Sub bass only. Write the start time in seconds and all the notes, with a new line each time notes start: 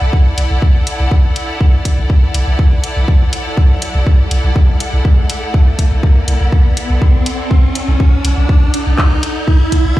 0.01 B1
0.38 B1
0.51 B1
0.75 B1
1.00 B1
1.24 B1
1.98 B1
2.34 B1
2.47 B1
2.72 B1
2.96 B1
3.21 B1
3.95 B1
4.31 B1
4.44 B1
4.69 B1
4.93 B1
5.18 B1
5.92 B1
6.28 B1
6.41 B1
6.65 B1
6.90 B1
7.15 B1
7.88 B1
8.25 B1
8.37 B1
8.62 B1
8.87 B1
9.11 B1
9.85 B1